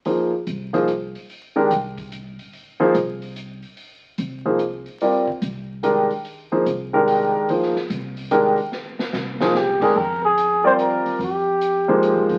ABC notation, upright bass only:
X:1
M:3/4
L:1/8
Q:"Swing" 1/4=145
K:Fdor
V:1 name="Upright bass" clef=bass
z2 C,,3 z | z2 C,,3 z | z2 C,,3 z | z2 C,,3 z |
z2 C,,3 z | z2 C,,3 z | z2 C,,3 z | z2 C,,3 z |
F,,4- F,, z | F,,4- (3F,, G,, _G,, |]